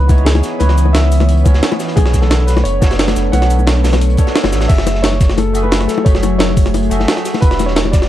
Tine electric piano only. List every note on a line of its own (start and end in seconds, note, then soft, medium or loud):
0.00 0.08 B3 medium
0.00 0.09 D#4 medium
0.00 0.10 E4 medium
0.00 0.11 C#5 medium
0.08 0.58 B3 loud
0.08 0.58 D#4 loud
0.08 0.59 E4 medium
0.08 0.59 C#5 loud
0.59 1.43 B3 medium
0.59 1.43 C#4 medium
0.59 1.44 E4 medium
0.59 1.45 C#5 medium
1.44 1.94 B3 loud
1.44 1.95 C#4 loud
1.44 1.95 E4 medium
1.44 1.96 C#5 loud
1.95 2.79 B3 medium
1.95 2.80 D4 medium
1.95 2.80 A4 medium
1.95 2.81 C#5 medium
2.81 3.30 B3 loud
2.81 3.31 D4 loud
2.81 3.31 A4 medium
2.81 3.32 C#5 loud
3.32 4.16 B3 medium
3.32 4.16 D4 medium
3.32 4.17 A4 medium
3.32 4.17 C#5 medium
4.18 4.23 B3 medium
4.18 4.23 D4 medium
4.18 4.24 A4 medium
4.18 4.24 C#5 loud
4.52 4.67 B3 medium
4.52 4.67 D4 medium
4.52 4.68 A4 medium
4.52 4.68 C#5 medium
4.68 5.52 A3 medium
4.68 5.53 F#4 medium
4.68 5.53 G#4 medium
4.68 5.54 E5 medium
5.53 6.03 A3 loud
5.53 6.04 F#4 medium
5.53 6.04 G#4 medium
5.53 6.05 E5 loud
6.04 6.88 A3 medium
6.04 6.89 F#4 medium
6.04 6.89 G#4 medium
6.04 6.90 E5 medium
6.90 7.40 A3 loud
6.90 7.40 F#4 medium
6.90 7.41 G#4 medium
6.90 7.41 E5 loud
7.41 8.09 D4 medium
7.41 8.09 F#4 medium
7.41 8.09 G4 medium
7.41 8.09 E5 medium